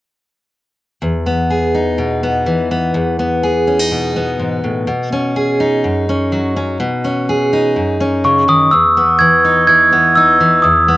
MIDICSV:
0, 0, Header, 1, 3, 480
1, 0, Start_track
1, 0, Key_signature, 4, "major"
1, 0, Tempo, 480769
1, 1017, Time_signature, 4, 2, 24, 8
1, 10953, End_track
2, 0, Start_track
2, 0, Title_t, "Glockenspiel"
2, 0, Program_c, 0, 9
2, 8234, Note_on_c, 0, 85, 70
2, 8475, Note_off_c, 0, 85, 0
2, 8475, Note_on_c, 0, 87, 67
2, 8692, Note_off_c, 0, 87, 0
2, 8700, Note_on_c, 0, 88, 68
2, 9146, Note_off_c, 0, 88, 0
2, 9173, Note_on_c, 0, 92, 79
2, 9646, Note_off_c, 0, 92, 0
2, 9658, Note_on_c, 0, 92, 86
2, 10103, Note_off_c, 0, 92, 0
2, 10139, Note_on_c, 0, 88, 77
2, 10582, Note_off_c, 0, 88, 0
2, 10606, Note_on_c, 0, 87, 69
2, 10953, Note_off_c, 0, 87, 0
2, 10953, End_track
3, 0, Start_track
3, 0, Title_t, "Steel-string acoustic guitar"
3, 0, Program_c, 1, 25
3, 1016, Note_on_c, 1, 40, 61
3, 1261, Note_on_c, 1, 59, 45
3, 1501, Note_on_c, 1, 68, 45
3, 1742, Note_on_c, 1, 63, 45
3, 1978, Note_on_c, 1, 47, 50
3, 2224, Note_off_c, 1, 59, 0
3, 2228, Note_on_c, 1, 59, 49
3, 2459, Note_on_c, 1, 52, 48
3, 2460, Note_off_c, 1, 47, 0
3, 2703, Note_off_c, 1, 59, 0
3, 2707, Note_on_c, 1, 59, 50
3, 2915, Note_off_c, 1, 68, 0
3, 2925, Note_off_c, 1, 40, 0
3, 2937, Note_on_c, 1, 40, 62
3, 2967, Note_off_c, 1, 63, 0
3, 3182, Note_off_c, 1, 59, 0
3, 3186, Note_on_c, 1, 59, 44
3, 3427, Note_on_c, 1, 68, 52
3, 3668, Note_on_c, 1, 61, 46
3, 3786, Note_off_c, 1, 61, 0
3, 3786, Note_on_c, 1, 63, 40
3, 3907, Note_on_c, 1, 47, 46
3, 4151, Note_off_c, 1, 59, 0
3, 4155, Note_on_c, 1, 59, 47
3, 4382, Note_off_c, 1, 40, 0
3, 4387, Note_on_c, 1, 44, 51
3, 4626, Note_off_c, 1, 44, 0
3, 4630, Note_on_c, 1, 45, 51
3, 4839, Note_off_c, 1, 68, 0
3, 4852, Note_off_c, 1, 47, 0
3, 4864, Note_on_c, 1, 47, 61
3, 4865, Note_off_c, 1, 52, 0
3, 4867, Note_off_c, 1, 63, 0
3, 4868, Note_off_c, 1, 45, 0
3, 5112, Note_off_c, 1, 59, 0
3, 5116, Note_on_c, 1, 61, 46
3, 5352, Note_on_c, 1, 68, 52
3, 5591, Note_on_c, 1, 63, 51
3, 5825, Note_off_c, 1, 47, 0
3, 5831, Note_on_c, 1, 42, 48
3, 6068, Note_off_c, 1, 61, 0
3, 6080, Note_on_c, 1, 61, 48
3, 6311, Note_on_c, 1, 54, 47
3, 6542, Note_off_c, 1, 61, 0
3, 6554, Note_on_c, 1, 61, 48
3, 6759, Note_off_c, 1, 42, 0
3, 6759, Note_off_c, 1, 54, 0
3, 6760, Note_off_c, 1, 68, 0
3, 6761, Note_off_c, 1, 61, 0
3, 6787, Note_on_c, 1, 47, 64
3, 7033, Note_on_c, 1, 61, 45
3, 7063, Note_off_c, 1, 63, 0
3, 7279, Note_on_c, 1, 68, 54
3, 7516, Note_on_c, 1, 63, 47
3, 7745, Note_off_c, 1, 47, 0
3, 7749, Note_on_c, 1, 42, 52
3, 7979, Note_off_c, 1, 61, 0
3, 7991, Note_on_c, 1, 61, 45
3, 8228, Note_on_c, 1, 49, 52
3, 8462, Note_off_c, 1, 49, 0
3, 8466, Note_on_c, 1, 51, 48
3, 8675, Note_off_c, 1, 42, 0
3, 8677, Note_off_c, 1, 61, 0
3, 8679, Note_off_c, 1, 63, 0
3, 8680, Note_off_c, 1, 68, 0
3, 8704, Note_off_c, 1, 51, 0
3, 8713, Note_on_c, 1, 40, 61
3, 8956, Note_on_c, 1, 59, 47
3, 9188, Note_on_c, 1, 52, 57
3, 9430, Note_on_c, 1, 63, 44
3, 9666, Note_off_c, 1, 52, 0
3, 9670, Note_on_c, 1, 52, 46
3, 9905, Note_off_c, 1, 59, 0
3, 9909, Note_on_c, 1, 59, 44
3, 10150, Note_off_c, 1, 63, 0
3, 10154, Note_on_c, 1, 63, 47
3, 10375, Note_off_c, 1, 52, 0
3, 10387, Note_on_c, 1, 52, 50
3, 10606, Note_off_c, 1, 40, 0
3, 10618, Note_on_c, 1, 40, 59
3, 10648, Note_off_c, 1, 63, 0
3, 10862, Note_off_c, 1, 59, 0
3, 10866, Note_on_c, 1, 59, 44
3, 10953, Note_off_c, 1, 40, 0
3, 10953, Note_off_c, 1, 52, 0
3, 10953, Note_off_c, 1, 59, 0
3, 10953, End_track
0, 0, End_of_file